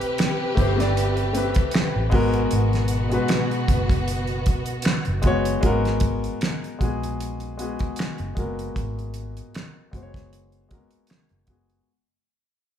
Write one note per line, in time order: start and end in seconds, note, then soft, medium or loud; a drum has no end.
0.00 2.10 C3 medium
0.00 0.25 A3 medium
0.00 0.26 C4 medium
0.00 0.27 G4 medium
0.00 2.11 G4 medium
0.00 0.31 B4 loud
0.00 2.10 B4 medium
0.00 closed hi-hat soft
0.18 finger snap medium
0.18 snare loud
0.18 closed hi-hat medium
0.55 1.52 G1 medium
0.55 0.72 A3 medium
0.55 0.73 C4 medium
0.55 0.74 G4 medium
0.55 kick medium
0.55 closed hi-hat medium
0.60 0.75 C5 medium
0.76 1.22 A3 medium
0.76 1.23 C4 medium
0.76 1.24 G4 medium
0.76 snare soft
0.80 1.24 D5 loud
0.80 closed hi-hat medium
0.97 closed hi-hat medium
1.17 closed hi-hat soft
1.33 2.12 A3 medium
1.33 2.12 C4 medium
1.33 2.13 G4 medium
1.33 closed hi-hat medium
1.37 2.14 B4 medium
1.55 kick medium
1.55 closed hi-hat medium
1.71 finger snap medium
1.71 snare loud
1.71 closed hi-hat medium
1.96 2.10 A1 medium
2.10 2.45 G#1 medium
2.10 5.59 B2 medium
2.10 2.89 G#3 loud
2.10 5.59 B3 medium
2.10 2.90 B3 medium
2.10 5.59 F#4 medium
2.10 2.91 F#4 medium
2.10 kick medium
2.10 open hi-hat soft
2.15 2.92 A#4 loud
2.34 closed hi-hat medium
2.51 3.16 G#1 loud
2.51 closed hi-hat medium
2.73 snare soft
2.73 closed hi-hat soft
2.88 closed hi-hat medium
3.09 4.32 G#3 medium
3.09 4.33 B3 medium
3.09 4.33 F#4 medium
3.09 closed hi-hat soft
3.14 4.34 B4 medium
3.28 finger snap medium
3.28 snare medium
3.28 closed hi-hat medium
3.51 closed hi-hat soft
3.68 4.64 F#1 medium
3.68 kick medium
3.68 closed hi-hat medium
3.89 kick medium
3.89 closed hi-hat medium
4.08 closed hi-hat medium
4.27 closed hi-hat soft
4.46 kick medium
4.46 closed hi-hat medium
4.66 closed hi-hat medium
4.82 finger snap medium
4.82 snare loud
4.82 closed hi-hat medium
5.05 5.22 F#1 medium
5.05 closed hi-hat soft
5.22 5.56 F#1 medium
5.22 5.54 G#3 medium
5.22 5.55 B3 medium
5.22 5.56 F#4 medium
5.22 kick medium
5.22 closed hi-hat medium
5.27 5.57 C#5 loud
5.45 closed hi-hat medium
5.61 6.28 G#1 medium
5.61 6.55 G#3 medium
5.61 5.70 A#3 medium
5.61 6.56 F#4 medium
5.61 kick medium
5.61 closed hi-hat medium
5.66 6.59 B3 medium
5.66 6.57 A#4 loud
5.85 snare soft
5.85 closed hi-hat soft
6.00 kick medium
6.00 closed hi-hat medium
6.24 closed hi-hat soft
6.41 finger snap medium
6.41 snare medium
6.41 closed hi-hat medium
6.64 closed hi-hat soft
6.79 7.76 A#1 medium
6.79 7.42 G#3 medium
6.79 7.43 B3 medium
6.79 7.43 F#4 medium
6.79 kick medium
6.79 closed hi-hat medium
6.83 7.44 G#4 medium
7.03 closed hi-hat soft
7.20 closed hi-hat medium
7.40 closed hi-hat soft
7.57 8.20 G#3 medium
7.57 8.21 B3 medium
7.57 8.21 F#4 medium
7.57 closed hi-hat medium
7.62 8.22 G#4 medium
7.79 kick medium
7.79 closed hi-hat medium
7.96 finger snap medium
7.96 snare loud
7.96 closed hi-hat medium
8.18 8.34 F#1 medium
8.18 closed hi-hat soft
8.35 8.69 F#1 medium
8.35 9.58 G#3 medium
8.35 8.43 A#3 medium
8.35 9.59 F#4 medium
8.35 kick medium
8.35 closed hi-hat medium
8.39 9.62 B3 medium
8.39 9.60 A#4 medium
8.59 closed hi-hat soft
8.76 9.40 G#1 loud
8.76 kick medium
8.76 closed hi-hat medium
8.99 closed hi-hat soft
9.14 closed hi-hat medium
9.37 closed hi-hat soft
9.55 finger snap medium
9.55 snare medium
9.55 closed hi-hat medium
9.91 10.88 F#1 medium
9.91 10.54 G#3 medium
9.91 10.55 B3 medium
9.91 10.55 F#4 medium
9.91 kick medium
9.91 closed hi-hat medium
9.96 10.01 C5 medium
10.03 10.60 C#5 medium
10.14 kick medium
10.14 snare soft
10.14 closed hi-hat soft
10.33 closed hi-hat medium
10.52 closed hi-hat soft
10.69 11.32 G#3 medium
10.69 10.77 A#3 soft
10.69 11.33 F#4 medium
10.69 kick medium
10.69 closed hi-hat medium
10.73 11.35 B3 medium
10.73 11.34 A#4 medium
10.91 closed hi-hat soft
11.07 finger snap medium
11.07 snare loud
11.07 closed hi-hat medium
11.29 11.45 F#1 medium
11.29 closed hi-hat soft
11.47 11.80 F#1 medium
11.47 11.78 G#3 medium
11.47 11.79 B3 medium
11.47 11.80 F#4 medium
11.47 kick medium
11.47 closed hi-hat medium
11.51 11.81 G#4 medium
11.70 closed hi-hat soft